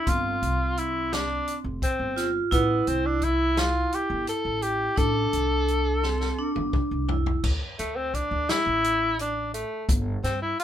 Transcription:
0.00 0.15 D4 medium
0.00 0.10 E4 medium
0.06 0.34 G1 medium
0.06 2.23 C4 medium
0.06 0.80 F4 medium
0.06 kick medium
0.06 closed hi-hat medium
0.42 1.38 C2 medium
0.42 closed hi-hat medium
0.77 1.15 E4 medium
0.77 closed hi-hat soft
1.13 1.56 D4 medium
1.13 snare medium
1.13 closed hi-hat medium
1.48 closed hi-hat medium
1.64 1.78 F1 medium
1.82 2.32 C4 medium
1.82 kick medium
1.82 closed hi-hat medium
1.99 2.40 G1 medium
2.16 2.53 F4 medium
2.16 snare soft
2.16 closed hi-hat medium
2.51 2.79 A1 medium
2.51 2.89 B3 medium
2.51 5.05 E4 loud
2.51 kick medium
2.51 closed hi-hat medium
2.87 3.83 C2 medium
2.87 3.07 C4 medium
2.87 closed hi-hat medium
3.06 3.25 D4 medium
3.22 3.60 E4 medium
3.22 kick medium
3.22 closed hi-hat medium
3.57 3.96 F4 medium
3.57 snare medium
3.57 closed hi-hat medium
3.92 4.28 G4 medium
3.92 closed hi-hat medium
4.10 4.24 G1 medium
4.27 4.64 A4 medium
4.27 closed hi-hat medium
4.45 4.86 A1 medium
4.62 4.99 G4 medium
4.62 closed hi-hat medium
4.96 5.25 A1 medium
4.96 5.98 D4 medium
4.96 6.73 A4 medium
4.96 kick loud
4.96 closed hi-hat medium
5.33 6.29 C2 medium
5.33 closed hi-hat medium
5.68 closed hi-hat soft
6.03 6.40 C4 medium
6.03 snare soft
6.21 snare soft
6.38 7.11 D4 medium
6.56 6.70 G1 medium
6.56 high tom medium
6.73 kick loud
6.73 mid tom medium
6.91 7.32 C2 medium
7.08 7.41 E4 medium
7.08 floor tom medium
7.26 floor tom medium
7.44 7.57 D2 medium
7.44 kick medium
7.44 crash medium
7.79 8.20 D2 medium
7.79 7.97 A3 medium
7.79 closed hi-hat medium
7.96 8.16 C4 medium
8.14 8.51 D4 medium
8.14 kick medium
8.14 closed hi-hat medium
8.31 8.45 D2 medium
8.49 9.19 E4 loud
8.49 snare medium
8.49 closed hi-hat medium
8.66 9.62 A1 medium
8.84 closed hi-hat medium
9.19 9.52 D4 medium
9.19 closed hi-hat medium
9.54 9.86 A3 medium
9.54 closed hi-hat medium
9.89 10.16 G1 loud
9.89 kick loud
9.89 closed hi-hat medium
10.23 10.51 G2 medium
10.23 10.40 C4 medium
10.23 snare soft
10.23 closed hi-hat medium
10.42 10.58 E4 medium
10.59 10.64 F4 medium
10.59 closed hi-hat medium

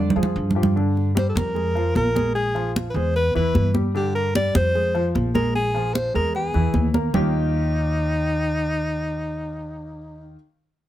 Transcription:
0.00 0.14 F2 medium
0.10 low conga loud
0.16 0.35 F2 medium
0.16 0.49 F3 medium
0.16 0.49 F4 medium
0.16 0.49 G#4 medium
0.23 low conga medium
0.36 1.30 G2 medium
0.51 low conga medium
0.55 0.72 F3 medium
0.55 0.73 F4 medium
0.55 0.73 G4 medium
0.63 low conga medium
0.76 1.09 D3 medium
0.76 1.09 D4 medium
0.76 high conga soft
0.97 high conga soft
1.15 1.48 G3 medium
1.15 1.48 G4 medium
1.15 1.28 C5 medium
1.15 high conga medium
1.29 1.39 A4 medium
1.35 1.92 F2 medium
1.35 1.96 A#4 medium
1.35 high conga medium
1.55 1.72 G#3 medium
1.55 1.72 G#4 medium
1.55 high conga soft
1.75 2.08 F3 medium
1.75 2.08 F4 medium
1.75 high conga soft
1.95 2.89 A#1 medium
1.95 2.33 A#4 medium
1.95 high conga medium
2.15 2.48 G#3 medium
2.15 2.48 G#4 medium
2.15 high conga medium
2.35 2.72 G#4 medium
2.35 high conga soft
2.55 2.88 F3 medium
2.55 2.88 F4 medium
2.55 high conga soft
2.76 high conga medium
2.90 2.98 B4 medium
2.94 3.32 E2 medium
2.94 3.12 G#3 medium
2.94 3.12 G#4 medium
2.94 3.15 C5 medium
2.94 high conga soft
3.16 3.32 B3 medium
3.16 3.34 B4 loud
3.16 3.32 B4 medium
3.16 high conga soft
3.35 3.54 E2 medium
3.35 3.68 E3 medium
3.35 3.68 E4 medium
3.35 3.73 B4 medium
3.35 high conga soft
3.55 4.49 G2 medium
3.55 high conga medium
3.74 3.91 G3 medium
3.74 3.91 G4 medium
3.74 high conga medium
3.94 4.27 D3 medium
3.94 4.28 D4 medium
3.94 4.14 G4 medium
3.94 high conga soft
4.15 4.34 A#4 medium
4.15 high conga soft
4.35 4.68 G3 medium
4.35 4.68 G4 medium
4.35 4.54 D5 loud
4.35 high conga medium
4.55 5.11 F2 medium
4.55 5.11 C5 loud
4.55 high conga medium
4.75 4.91 G#3 medium
4.75 4.91 G#4 medium
4.75 high conga soft
4.95 5.27 F3 medium
4.95 5.27 F4 medium
4.95 high conga soft
5.15 6.09 A#1 medium
5.15 high conga medium
5.34 5.67 G#3 medium
5.34 5.67 G#4 medium
5.34 5.53 A#4 medium
5.34 high conga medium
5.55 5.95 G#4 medium
5.55 high conga soft
5.75 6.07 F3 medium
5.75 6.07 F4 medium
5.75 high conga soft
5.94 6.14 C5 medium
5.94 high conga medium
6.14 6.52 E2 medium
6.14 6.31 G#3 medium
6.14 6.31 G#4 medium
6.14 6.33 A#4 medium
6.14 high conga soft
6.34 6.51 B3 medium
6.34 6.91 G#4 medium
6.34 6.51 B4 medium
6.34 high conga soft
6.54 6.73 E2 medium
6.54 6.87 E3 medium
6.54 6.87 E4 medium
6.54 high conga soft
6.74 7.09 D#2 medium
6.74 high conga medium
6.94 7.11 A#3 medium
6.94 7.11 A#4 medium
6.94 high conga medium
7.14 10.35 D#2 medium
7.14 10.35 D#3 medium
7.14 10.35 A#3 medium
7.14 10.35 C#4 medium
7.14 10.35 D#4 medium
7.14 10.37 D#4 medium
7.14 10.36 F4 medium
7.14 10.36 G4 loud
7.14 low conga medium

